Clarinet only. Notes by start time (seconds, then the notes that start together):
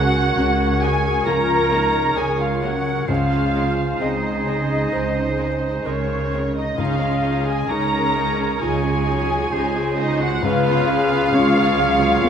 Already playing: A#4
3.08 G#4
4.00 G#4
4.93 C5
5.86 A#4
6.79 G#4
8.61 F4
9.08 F4
10.44 G#4
12.24 A#4